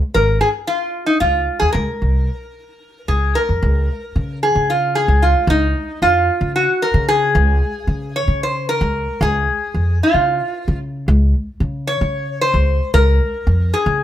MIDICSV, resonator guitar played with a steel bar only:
0, 0, Header, 1, 2, 480
1, 0, Start_track
1, 0, Key_signature, -5, "major"
1, 0, Tempo, 532387
1, 1579, Time_signature, 7, 3, 24, 8
1, 12654, End_track
2, 0, Start_track
2, 0, Title_t, "Resonator guitar played with a steel bar"
2, 0, Program_c, 0, 25
2, 130, Note_on_c, 0, 70, 90
2, 364, Note_off_c, 0, 70, 0
2, 367, Note_on_c, 0, 68, 79
2, 433, Note_off_c, 0, 68, 0
2, 608, Note_on_c, 0, 65, 81
2, 956, Note_off_c, 0, 65, 0
2, 959, Note_on_c, 0, 63, 73
2, 1080, Note_off_c, 0, 63, 0
2, 1084, Note_on_c, 0, 65, 82
2, 1426, Note_off_c, 0, 65, 0
2, 1438, Note_on_c, 0, 68, 77
2, 1551, Note_off_c, 0, 68, 0
2, 1555, Note_on_c, 0, 70, 83
2, 2779, Note_on_c, 0, 68, 74
2, 3008, Note_off_c, 0, 70, 0
2, 3023, Note_on_c, 0, 70, 75
2, 3027, Note_off_c, 0, 68, 0
2, 3946, Note_off_c, 0, 70, 0
2, 3993, Note_on_c, 0, 68, 74
2, 4234, Note_off_c, 0, 68, 0
2, 4236, Note_on_c, 0, 65, 70
2, 4466, Note_on_c, 0, 68, 87
2, 4476, Note_off_c, 0, 65, 0
2, 4710, Note_on_c, 0, 65, 72
2, 4711, Note_off_c, 0, 68, 0
2, 4953, Note_off_c, 0, 65, 0
2, 4958, Note_on_c, 0, 63, 83
2, 5397, Note_off_c, 0, 63, 0
2, 5431, Note_on_c, 0, 65, 86
2, 5873, Note_off_c, 0, 65, 0
2, 5911, Note_on_c, 0, 66, 74
2, 6152, Note_on_c, 0, 70, 91
2, 6153, Note_off_c, 0, 66, 0
2, 6384, Note_off_c, 0, 70, 0
2, 6387, Note_on_c, 0, 68, 91
2, 7356, Note_on_c, 0, 73, 91
2, 7373, Note_off_c, 0, 68, 0
2, 7572, Note_off_c, 0, 73, 0
2, 7603, Note_on_c, 0, 72, 86
2, 7830, Note_off_c, 0, 72, 0
2, 7834, Note_on_c, 0, 70, 96
2, 8317, Note_on_c, 0, 68, 90
2, 8322, Note_off_c, 0, 70, 0
2, 8992, Note_off_c, 0, 68, 0
2, 9046, Note_on_c, 0, 65, 72
2, 9717, Note_off_c, 0, 65, 0
2, 10706, Note_on_c, 0, 73, 91
2, 11189, Note_off_c, 0, 73, 0
2, 11192, Note_on_c, 0, 72, 97
2, 11632, Note_off_c, 0, 72, 0
2, 11665, Note_on_c, 0, 70, 93
2, 12384, Note_on_c, 0, 68, 80
2, 12403, Note_off_c, 0, 70, 0
2, 12654, Note_off_c, 0, 68, 0
2, 12654, End_track
0, 0, End_of_file